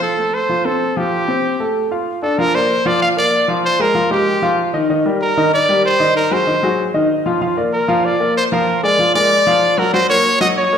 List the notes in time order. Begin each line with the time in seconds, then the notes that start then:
Already playing: F3 F4
0.02 A4
0.18 A3 A4
0.34 C5
0.49 F3 F4
0.65 C4 A4 C5
0.97 F3 F4 G4
1.28 C4 C5
1.60 A3 A4
1.91 F4 F5
2.22 D4 A4 D5
2.38 F3 F4 A#4 F5
2.54 A#3 A#4 C5 D5
2.85 F3 F4 D5 F5
3.02 F5
3.16 A#3 A#4 D5
3.48 F3 F4 F5
3.65 C5
3.79 G#3 G#4 A#4
3.95 F3 F4 F5
4.11 G#3 G4 A#4
4.42 F3 F4 F5
4.73 D#3 D#4 D#5
4.89 D#3 D#4 D#5
5.05 G3 G4 A#4
5.21 A#4
5.37 D#3 D#4 D#5
5.54 D5
5.69 G3 G4 A#4
5.85 C5
6.00 D#3 D#4 D#5
6.16 A#4
6.31 F#3 F#4 G#4 C5
6.47 D#3 D#4 D#5
6.63 F#3 F#4 G#4
6.94 D#3 D#4 D#5
7.26 F3 F4 F5
7.41 F3 F4 F5
7.57 A#3 A#4 D5
7.73 A#4
7.88 F3 F4 F5
8.05 D5
8.20 A#3 A#4 D5
8.37 C5
8.52 F3 F4 A#4 F5
8.83 G#3 G#4 A#4 D5
8.99 F3 F4 F5
9.15 G#3 G#4 A#4 D5
9.47 F3 F4 F5
9.78 F#3 F#4 A#4 F#5
9.94 F#3 F#4 C5 F#5
10.10 A#3 A#4 C#5
10.41 F#3 F#4 D#5 F#5
10.57 C#5
10.72 A#3 A#4 C#5